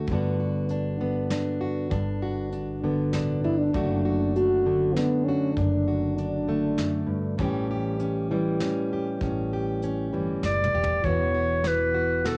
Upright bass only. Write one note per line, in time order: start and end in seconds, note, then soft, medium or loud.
0.08 1.26 G1 medium
1.91 3.09 G1 medium
3.14 3.41 A1 medium
3.44 3.71 G1 medium
3.75 4.92 F#1 medium
5.57 6.74 F#1 medium
7.39 8.57 A1 medium
9.21 10.08 A1 medium
10.14 10.40 G1 medium
10.43 10.70 F#1 medium
10.74 11.01 E1 medium
11.04 12.21 E1 medium